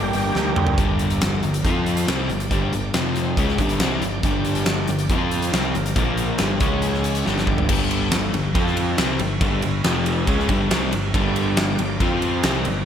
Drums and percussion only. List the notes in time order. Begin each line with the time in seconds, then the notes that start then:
0.13 open hi-hat
0.35 snare
0.56 mid tom
0.67 floor tom
0.78 kick, closed hi-hat
0.99 closed hi-hat
1.10 closed hi-hat
1.21 snare, closed hi-hat
1.43 closed hi-hat
1.54 closed hi-hat
1.65 kick, closed hi-hat
1.86 closed hi-hat
1.97 closed hi-hat
2.08 snare, closed hi-hat
2.30 closed hi-hat
2.40 closed hi-hat
2.51 kick, closed hi-hat
2.73 closed hi-hat
2.94 snare, closed hi-hat
3.16 closed hi-hat
3.37 kick, closed hi-hat
3.48 snare
3.58 kick, closed hi-hat
3.69 closed hi-hat
3.80 snare, closed hi-hat
4.02 closed hi-hat
4.23 kick, closed hi-hat
4.45 closed hi-hat
4.55 closed hi-hat
4.66 snare, closed hi-hat
4.88 closed hi-hat
4.99 closed hi-hat
5.09 kick, closed hi-hat
5.31 closed hi-hat
5.42 closed hi-hat
5.53 snare, closed hi-hat
5.75 closed hi-hat
5.86 closed hi-hat
5.96 kick, closed hi-hat
6.17 closed hi-hat
6.38 snare, closed hi-hat
6.60 kick, closed hi-hat
6.82 closed hi-hat
6.94 snare
7.04 closed hi-hat
7.15 closed hi-hat
7.26 snare
7.38 snare
7.47 kick
7.58 floor tom
7.69 kick, crash
7.91 ride
8.11 snare, ride
8.34 ride
8.55 kick, ride
8.67 snare
8.77 ride
8.98 snare, ride
9.19 ride
9.41 kick, ride
9.62 ride
9.84 snare, ride
10.06 ride
10.27 kick, ride
10.39 snare
10.49 kick, ride
10.71 snare, ride
10.93 ride
11.14 kick, ride
11.36 ride
11.57 snare, ride
11.79 ride
12.00 kick, ride
12.22 ride
12.43 snare, ride
12.65 ride